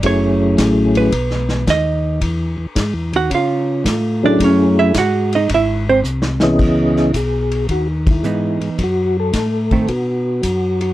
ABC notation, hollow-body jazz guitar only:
X:1
M:4/4
L:1/8
Q:"Swing" 1/4=110
K:G#phr
V:1 name="Hollow-body jazz guitar"
c3 B3 d2 | z3 [Ff] [^E^e]3 [=D=d] | [Cc] [Ee] [Ff] [Dd] [Ee] [^B,^B] z2 | [K:C#m] z6 [E,B,D]2 |
z3 [D,A,^B,] z4 |]